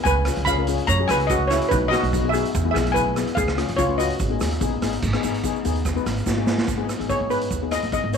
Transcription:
0.04 C#2 B4 G#5, kick, closed hi-hat, shaker
0.25 C#4 F4 G#4, cross-stick, closed hi-hat, shaker
0.36 C#2, closed hi-hat
0.45 C#4 F4 G#4 F5 B5, kick, closed hi-hat, shaker
0.58 C#4 F4 A#4
0.67 C#4 F4 G#4, closed hi-hat, shaker
0.78 closed hi-hat
0.87 F#2 C#5 A#5, kick, closed hi-hat, shaker
0.99 C#4 F#4 G#4
1.08 C#2 C#4 F#4 G#4 B4 G#5, cross-stick, closed hi-hat, shaker
1.20 closed hi-hat
1.27 F#4 D#5, kick, closed hi-hat, shaker
1.31 C#4 F#4 G#4
1.48 E4 C#5, cross-stick, closed hi-hat, shaker
1.52 C#4 F#4 G#4
1.61 closed hi-hat
1.69 B1 D#4 B4, kick, closed hi-hat, shaker
1.88 F#4 D#5
1.92 B3 D#4 F#4, cross-stick, closed hi-hat, shaker
2.03 B1, closed hi-hat
2.13 B3 D#4 F#4, kick, closed hi-hat, shaker
2.23 B3 D#4 G#4
2.29 G#4 E5
2.33 B3 D#4 F#4, closed hi-hat, shaker
2.45 closed hi-hat
2.55 E2, kick, closed hi-hat, shaker
2.65 B3 E4 G#4
2.71 B1 G#4 E5
2.76 B3 E4 G#4, cross-stick, closed hi-hat, shaker
2.87 closed hi-hat
2.92 B3 E4 G#4 B4 G#5, kick
2.96 closed hi-hat, shaker
3.16 B3 E4 G#4, cross-stick, closed hi-hat, shaker
3.27 closed hi-hat
3.35 C#2 G#4 F5, kick, closed hi-hat, shaker
3.48 cross-stick
3.57 C#4 F4 G#4, cross-stick, closed hi-hat
3.68 C#2, closed hi-hat
3.77 C#4 F4 G#4 C#5, kick, closed hi-hat, shaker
3.89 C#4 F4 B4
3.97 C#4 F4 F#4 B4 D#5, closed hi-hat, shaker
4.10 closed hi-hat
4.20 G#1, kick, closed hi-hat, shaker
4.30 B3 D#4 G#4
4.40 D#2 B3 D#4 G#4, cross-stick, closed hi-hat, shaker
4.51 closed hi-hat
4.60 A#1 B3 D#4 G#4, kick, closed hi-hat, shaker
4.82 G#1 B3 D#4 G#4, cross-stick, closed hi-hat, shaker
4.93 closed hi-hat
5.02 G#1, kick, crash, shaker
5.13 B3 D#4 G#4, cross-stick, shaker
5.23 G#1 B3 D#4 G#4, closed hi-hat, shaker
5.34 closed hi-hat, shaker
5.44 B3 D#4 G#4, kick, closed hi-hat, shaker
5.56 shaker
5.65 D#2 B3 D#4 G#4, closed hi-hat, shaker
5.75 closed hi-hat
5.85 kick, cross-stick, closed hi-hat, shaker
5.95 B3 D#4 B4, shaker
6.06 G#1, cross-stick, closed hi-hat, shaker
6.17 closed hi-hat, shaker
6.26 G#1 B3 D#4 F#4, kick, snare, shaker
6.37 B3 D#4 G#4
6.47 B3 D#4 G#4, snare, shaker
6.58 snare
6.68 G#1, kick, closed hi-hat, shaker
6.77 B3 D#4 G#4
6.89 cross-stick, closed hi-hat, shaker
6.99 G#1 B3 D#4 G#4, closed hi-hat
7.09 B3 D#4 G#4 C#5, kick, closed hi-hat, shaker
7.20 G#2
7.30 B3 D#4 G#4 B4, closed hi-hat, shaker
7.41 closed hi-hat
7.50 D#2, kick, closed hi-hat, shaker
7.62 B3 D#4 G#4
7.71 B3 D#4 G#4 D#5, cross-stick, closed hi-hat, shaker
7.82 G#1, closed hi-hat
7.92 B3 D#4 G#4 D#5, kick, closed hi-hat, shaker
8.04 G#1
8.12 B3 D#4 B4 C#5, closed hi-hat, shaker

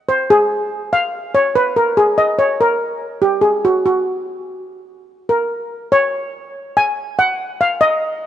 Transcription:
0.09 C5
0.30 G#4
0.93 F5
1.35 C#5
1.56 B4
1.76 A#4
1.97 G#4
2.18 D#5
2.39 C#5
2.61 A#4
3.22 G4
3.41 G#4
3.65 F#4
3.86 F#4
5.29 A#4
5.92 C#5
6.77 G#5
7.19 F#5
7.61 F5
7.81 D#5

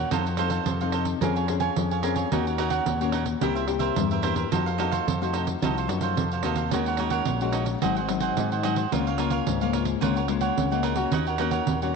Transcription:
Already playing: A#4
0.11 F2 F3 C4 D#4 A4 C5 F5, pandeiro
0.26 A4 C5 F5, pandeiro
0.37 C4 D#4 A4 C5 F5, pandeiro
0.50 A4 C5 F5, pandeiro
0.66 F2 C3, pandeiro
0.81 C4 D#4 A4 C5 F5, pandeiro
0.92 D#4 A4 C5 F5, pandeiro
1.05 muted cavaquinho stroke, pandeiro
1.21 F2 F3 C4 C#4 G#4 A#4 C#5 F5 G#5, pandeiro
1.36 C#5 F5 G#5, pandeiro
1.48 C4 C#4 G#4, muted cavaquinho stroke, pandeiro
1.60 C#5 F5 G#5, pandeiro
1.76 F2 F3, pandeiro
1.91 C#5 F5 G#5, pandeiro
2.03 C4 C#4 G#4 A#4 C#5 F5 G#5, pandeiro
2.16 C#5 F5 G#5, pandeiro
2.31 D#2 D#3 A#3 C#4 D#4 F#4 A#4 C#5 F#5, pandeiro
2.47 A#4 C#5 F#5, pandeiro
2.58 A#3 C#4 D#4 F#4 A#4 C#5 F#5, pandeiro
2.70 A#4 C#5 F#5, pandeiro
2.86 D#2 A#2, pandeiro
3.01 A#3 C#4 F#4 A#4 C#5 F#5, pandeiro
3.12 D#4 A#4 C#5 F#5, pandeiro
3.25 muted cavaquinho stroke, pandeiro
3.41 C2 C3 A#3 E4 G4 A#4 C5 E5, pandeiro
3.55 A#4 C5 E5, pandeiro
3.67 A#3 E4 G4, muted cavaquinho stroke, pandeiro
3.79 A#4 C5 E5, pandeiro
3.96 E2 G2, pandeiro
4.11 A#4 C5 E5, pandeiro
4.22 A#3 E4 G4 A#4 C5 E5, pandeiro
4.35 A#4 C5 E5, pandeiro
4.52 F2 F3 A3 D#4 F#4 A4 C5 F5, pandeiro
4.66 A4 C5 F5, pandeiro
4.78 A3 D#4 F#4 A4 C5 F5, pandeiro
4.91 A4 C5 F5, pandeiro
5.06 F2 C3, pandeiro
5.21 A3 D#4 F#4 A4 C5 F5, pandeiro
5.33 D#4 A4 C5 F5, pandeiro
5.47 muted cavaquinho stroke, pandeiro
5.62 C2 F3 A3 D#4 F#4 A4 C5 F5, pandeiro
5.77 A4 C5 F5, pandeiro
5.88 F#2 A3 D#4 F#4, muted cavaquinho stroke, pandeiro
6.01 A4 C5 F5, pandeiro
6.16 F2 C3, pandeiro
6.32 A4 C5 F5, pandeiro
6.42 D#2 A3 D#4 F#4 A4 C5 F5, pandeiro
6.56 A4 C5 F5, pandeiro
6.71 D#2 D#3 G#3 C#4 D#4 F#4 A#4 C#5 F#5, pandeiro
6.86 A#4 C#5 F#5, pandeiro
6.97 G#3 C#4 D#4 F#4 A#4 C#5 F#5, pandeiro
7.10 A#4 C#5 F#5, pandeiro
7.25 A#1 A#2, pandeiro
7.41 G#3 C#4 F#4 A#4 C#5 F#5, pandeiro
7.53 D#4 A#4 C#5 F#5, pandeiro
7.65 muted cavaquinho stroke, pandeiro
7.81 G#1 G#2 F#3 C4 D#4 F#4 G#4 C5 F#5, pandeiro
7.97 G#4 C5 F#5, pandeiro
8.08 F#3 C4 D#4, muted cavaquinho stroke, pandeiro
8.20 G#4 C5 F#5, pandeiro
8.37 G#2 D#3, pandeiro
8.52 G#4 C5 F#5, pandeiro
8.63 F#3 C4 D#4 F#4 G#4 C5 F#5, pandeiro
8.76 G#4 C5 F#5, pandeiro
8.92 C#2 C#3 G#3 A#3 F4 A#4 C#5 F5, pandeiro
9.07 A#4 C#5 F5, pandeiro
9.18 G#3 A#3 F4 A#4 C#5 F5, pandeiro
9.30 A#4 C#5 F5, pandeiro
9.47 C#2 G#2, pandeiro
9.61 G#3 A#3 F4 A#4 C#5 F5, pandeiro
9.73 F4 A#4 C#5 F5, pandeiro
9.85 muted cavaquinho stroke, pandeiro
10.01 C#2 C#3 G#3 A#3 F4 A#4 C#5 F#5, pandeiro
10.16 A#4 C#5 F#5, pandeiro
10.28 G#3 A#3 F4, muted cavaquinho stroke, pandeiro
10.41 A#4 C#5 F#5, pandeiro
10.57 C#2 C#3, pandeiro
10.71 G#3 A#3 F4 A#4 C#5 F#5, pandeiro
10.83 F4 A#4 C#5 F#5, pandeiro
10.96 A#3 C#4 F#4 A#4 C#5 F#5, pandeiro
11.12 D#2 D#3 D#4 A#4 C#5 F#5, pandeiro
11.27 A#4 C#5 F#5, pandeiro
11.38 A#3 C#4 D#4 F#4 A#4 C#5 F#5, pandeiro
11.51 A#4 C#5 F#5, pandeiro
11.67 D#2 A#2, pandeiro
11.82 A#3 C#4 F#4 A#4 C#5 F#5, pandeiro

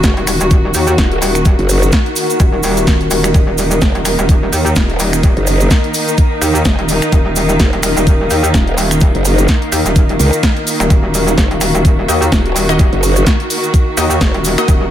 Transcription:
Already playing: D#3 A#3 D#4 F#4 A#4 F#5
0.03 F#1, kick, snare, closed hi-hat, cabasa
0.17 D#1, closed hi-hat
0.27 D#1, finger snap, open hi-hat, cabasa
0.41 D#1, closed hi-hat, cabasa
0.51 kick, closed hi-hat, cabasa
0.74 D#2, open hi-hat, cabasa
0.87 closed hi-hat, cabasa
0.98 D#1, kick, snare, closed hi-hat, cabasa
1.12 closed hi-hat
1.22 D#1, open hi-hat, cabasa
1.35 finger snap, closed hi-hat, cabasa
1.45 kick, closed hi-hat, cabasa
1.59 F#1, closed hi-hat
1.69 open hi-hat, cabasa
1.82 closed hi-hat, cabasa
1.92 kick, snare, closed hi-hat, cabasa
2.06 closed hi-hat
2.16 open hi-hat, cabasa
2.30 closed hi-hat, cabasa
2.40 D#1, kick, closed hi-hat, cabasa
2.63 D#1, open hi-hat, cabasa
2.77 closed hi-hat, cabasa
2.87 kick, snare, closed hi-hat, cabasa
3.01 closed hi-hat
3.11 D#1, open hi-hat, cabasa
3.24 finger snap, closed hi-hat, cabasa
3.34 D#1 D#4, kick, closed hi-hat, cabasa
3.58 open hi-hat, cabasa
3.71 closed hi-hat, cabasa
3.81 F#1, kick, snare, closed hi-hat, cabasa
3.95 D#1, closed hi-hat
4.05 D#1, finger snap, open hi-hat, cabasa
4.19 D#1, closed hi-hat, cabasa
4.29 kick, closed hi-hat, cabasa
4.52 D#2, open hi-hat, cabasa
4.66 closed hi-hat, cabasa
4.76 D#1, kick, snare, closed hi-hat, cabasa
4.82 F5
4.90 closed hi-hat
4.99 D#1, open hi-hat, cabasa
5.13 finger snap, closed hi-hat, cabasa
5.23 kick, closed hi-hat, cabasa
5.37 F#1, closed hi-hat
5.47 open hi-hat, cabasa
5.60 closed hi-hat, cabasa
5.70 kick, snare, closed hi-hat, cabasa
5.84 closed hi-hat
5.94 open hi-hat, cabasa
6.08 closed hi-hat, cabasa
6.17 kick, closed hi-hat, cabasa
6.41 D#2, open hi-hat, cabasa
6.55 closed hi-hat, cabasa
6.65 F#1, kick, snare, closed hi-hat, cabasa
6.79 D#1, closed hi-hat
6.89 open hi-hat, cabasa
7.02 finger snap, closed hi-hat, cabasa
7.12 D#1, kick, closed hi-hat, cabasa
7.36 open hi-hat, cabasa
7.49 closed hi-hat, cabasa
7.60 F#1, kick, snare, closed hi-hat, cabasa
7.73 D#1, closed hi-hat
7.83 D#1, finger snap, open hi-hat, cabasa
7.97 D#1, closed hi-hat, cabasa
8.07 kick, closed hi-hat, cabasa
8.30 D#2, open hi-hat, cabasa
8.44 closed hi-hat, cabasa
8.54 D#1, kick, snare, closed hi-hat, cabasa
8.67 closed hi-hat
8.78 D#1, open hi-hat, cabasa
8.91 finger snap, closed hi-hat, cabasa
9.00 kick, closed hi-hat, cabasa
9.15 F#1, closed hi-hat
9.25 open hi-hat, cabasa
9.38 closed hi-hat, cabasa
9.48 kick, snare, closed hi-hat, cabasa
9.62 closed hi-hat
9.72 D#2, open hi-hat, cabasa
9.86 D#1, closed hi-hat, cabasa
9.96 kick, closed hi-hat, cabasa
10.09 closed hi-hat
10.19 C#2, open hi-hat, cabasa
10.33 closed hi-hat, cabasa
10.43 kick, snare, closed hi-hat, cabasa
10.57 closed hi-hat
10.67 open hi-hat, cabasa
10.80 D#1, finger snap, closed hi-hat, cabasa
10.90 D#1 F#4, kick, closed hi-hat, cabasa
11.14 open hi-hat, cabasa
11.27 closed hi-hat, cabasa
11.38 F#1, kick, snare, closed hi-hat, cabasa
11.51 D#1, closed hi-hat
11.61 D#1, finger snap, open hi-hat, cabasa
11.75 D#1, closed hi-hat, cabasa
11.85 kick, closed hi-hat, cabasa
12.08 D#2 A#3 D#4 F#4 D#5, open hi-hat, cabasa
12.22 closed hi-hat, cabasa
12.32 D#1, kick, snare, closed hi-hat, cabasa
12.37 F#5
12.46 closed hi-hat
12.56 D#1, open hi-hat, cabasa
12.69 A#3 D#4 F#4 D#5, finger snap, closed hi-hat, cabasa
12.79 kick, closed hi-hat, cabasa
12.93 F#1, closed hi-hat
13.03 open hi-hat, cabasa
13.16 closed hi-hat, cabasa
13.27 kick, snare, closed hi-hat, cabasa
13.40 closed hi-hat
13.50 open hi-hat, cabasa
13.64 closed hi-hat, cabasa
13.74 kick, closed hi-hat, cabasa
13.97 D#2 A#3 D#4 F#4 D#5, open hi-hat, cabasa
14.10 closed hi-hat, cabasa
14.21 F#1, kick, snare, closed hi-hat, cabasa
14.34 D#1, closed hi-hat
14.44 open hi-hat, cabasa
14.58 A#3 D#4 F#4 D#5, finger snap, closed hi-hat, cabasa
14.68 D#1, kick, closed hi-hat, cabasa

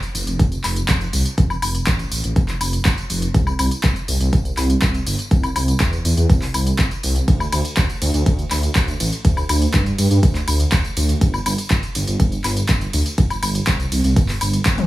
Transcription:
0.03 closed hi-hat, tambourine
0.15 F1, open hi-hat, tambourine
0.27 F1, closed hi-hat, tambourine
0.39 F1, kick, closed hi-hat, tambourine
0.52 closed hi-hat, tambourine
0.64 F1, clap, open hi-hat, tambourine, high woodblock
0.76 closed hi-hat, tambourine
0.88 F1, kick, clap, closed hi-hat, tambourine
1.01 closed hi-hat, tambourine
1.13 C2, open hi-hat, tambourine
1.26 closed hi-hat, tambourine
1.38 F1, kick, closed hi-hat, tambourine
1.50 tambourine, high woodblock
1.62 F1, open hi-hat, tambourine, high woodblock
1.75 closed hi-hat, tambourine
1.87 A1, kick, clap, closed hi-hat, tambourine
1.99 closed hi-hat, tambourine
2.12 A1, open hi-hat, tambourine
2.24 A1, closed hi-hat, tambourine
2.36 F1, kick, closed hi-hat, tambourine
2.48 clap, closed hi-hat, tambourine
2.61 F1, open hi-hat, tambourine, high woodblock
2.73 closed hi-hat, tambourine
2.85 F1, kick, clap, closed hi-hat, tambourine
2.98 closed hi-hat, tambourine
3.10 F1, open hi-hat, tambourine
3.22 closed hi-hat, tambourine
3.34 C2, kick, closed hi-hat, tambourine
3.47 tambourine, high woodblock
3.59 C2, open hi-hat, tambourine, high woodblock
3.71 closed hi-hat, tambourine
3.83 C2, kick, clap, closed hi-hat, tambourine
3.96 closed hi-hat, tambourine
4.08 C2, open hi-hat, tambourine
4.21 C2, closed hi-hat, tambourine
4.33 C2, kick, closed hi-hat, tambourine
4.45 closed hi-hat, tambourine
4.57 C2, clap, open hi-hat, tambourine, high woodblock
4.70 closed hi-hat, tambourine
4.82 C2, kick, clap, closed hi-hat, tambourine
4.94 closed hi-hat, tambourine
5.07 G1, open hi-hat, tambourine
5.19 closed hi-hat, tambourine
5.31 C2, kick, closed hi-hat, tambourine
5.43 closed hi-hat, tambourine, high woodblock
5.56 C2, open hi-hat, tambourine, high woodblock
5.68 closed hi-hat, tambourine
5.80 E2, kick, clap, closed hi-hat
5.93 closed hi-hat, tambourine
6.05 E2, open hi-hat, tambourine
6.17 E2, closed hi-hat, tambourine
6.30 C2, kick, closed hi-hat, tambourine
6.42 clap, open hi-hat, tambourine
6.54 C2, open hi-hat, tambourine, high woodblock
6.67 closed hi-hat, tambourine
6.79 C2, kick, clap, closed hi-hat, tambourine
6.91 closed hi-hat, tambourine
7.03 C2, open hi-hat, tambourine
7.16 closed hi-hat, tambourine
7.28 D2, kick, closed hi-hat, ride, tambourine
7.40 tambourine, high woodblock
7.52 D2, open hi-hat, ride, tambourine, high woodblock
7.65 closed hi-hat, tambourine
7.77 D2, kick, clap, closed hi-hat, ride, tambourine
7.89 closed hi-hat, tambourine
8.02 D2, open hi-hat, ride, tambourine
8.14 D2, closed hi-hat, tambourine
8.26 D2, kick, closed hi-hat, ride, tambourine
8.39 closed hi-hat, tambourine
8.51 D2, clap, open hi-hat, ride, tambourine, high woodblock
8.63 closed hi-hat, tambourine
8.75 D2, kick, clap, closed hi-hat, ride, tambourine
8.88 closed hi-hat, tambourine
9.00 A1, open hi-hat, ride, tambourine
9.12 closed hi-hat, tambourine
9.25 D2, kick, closed hi-hat, ride, tambourine
9.37 tambourine, high woodblock
9.49 D2, open hi-hat, ride, tambourine, high woodblock
9.62 closed hi-hat, tambourine
9.74 G2, kick, clap, closed hi-hat, ride, tambourine
9.86 closed hi-hat, tambourine
9.98 G2, open hi-hat, ride, tambourine
10.11 G2, closed hi-hat, tambourine
10.23 D2, kick, closed hi-hat, ride, tambourine
10.35 clap, closed hi-hat, tambourine
10.48 D2, open hi-hat, ride, tambourine, high woodblock
10.60 closed hi-hat, tambourine
10.72 D2, kick, clap, closed hi-hat, ride, tambourine
10.85 closed hi-hat, tambourine
10.97 D2, open hi-hat, ride, tambourine
11.09 closed hi-hat, tambourine
11.21 G1, kick, closed hi-hat, ride, tambourine
11.34 tambourine, high woodblock
11.46 G1, open hi-hat, ride, tambourine, high woodblock
11.58 closed hi-hat, tambourine
11.70 G1, kick, clap, closed hi-hat, ride, tambourine
11.83 closed hi-hat, tambourine
11.95 G1, open hi-hat, ride, tambourine
12.07 G1, closed hi-hat, tambourine
12.20 G1, kick, closed hi-hat, ride, tambourine
12.32 closed hi-hat, tambourine
12.44 G1, clap, open hi-hat, ride, tambourine, high woodblock
12.57 closed hi-hat, tambourine
12.69 G1, kick, clap, closed hi-hat, ride, tambourine
12.81 closed hi-hat, tambourine
12.93 D2, open hi-hat, ride, tambourine
13.06 closed hi-hat, tambourine
13.18 G1, kick, closed hi-hat, ride, tambourine
13.30 closed hi-hat, tambourine, high woodblock
13.43 G1, open hi-hat, ride, tambourine, high woodblock
13.55 closed hi-hat, tambourine
13.67 C2, kick, clap, closed hi-hat, ride, tambourine
13.80 closed hi-hat, tambourine
13.92 C2, open hi-hat, ride, tambourine
14.04 C2, closed hi-hat, tambourine
14.16 G1, kick, closed hi-hat, ride, tambourine
14.29 clap, open hi-hat, tambourine
14.41 G1, open hi-hat, ride, tambourine, high woodblock
14.53 closed hi-hat, tambourine
14.66 G1, kick, clap, closed hi-hat, ride, tambourine
14.78 closed hi-hat, high tom, tambourine

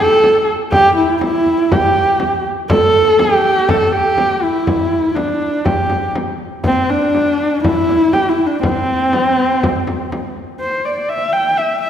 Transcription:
0.00 A4
0.11 frame drum
0.24 frame drum
0.72 G4, frame drum
0.97 E4
1.09 frame drum
1.21 E4, frame drum
1.46 frame drum
1.72 G4, frame drum
2.08 frame drum
2.20 frame drum
2.70 A4, frame drum
3.07 frame drum
3.19 G4, frame drum
3.43 frame drum
3.69 A4, frame drum
3.86 A4
3.92 G4
4.06 frame drum
4.18 frame drum
4.42 E4
4.67 frame drum
5.15 D4, frame drum
5.42 frame drum
5.65 G4, frame drum
5.90 frame drum
6.03 frame drum
6.15 frame drum
6.64 C4, frame drum
6.90 D4
7.03 frame drum
7.15 frame drum
7.40 frame drum
7.64 E4, frame drum
7.89 frame drum
8.02 frame drum
8.13 G4, frame drum
8.29 E4
8.46 D4
8.62 C4, frame drum
9.00 frame drum
9.13 frame drum
9.38 frame drum
9.63 frame drum
9.87 frame drum
10.00 frame drum
10.12 frame drum
10.60 C5
10.85 D5
11.09 E5
11.33 G5
11.57 E5
11.82 E5

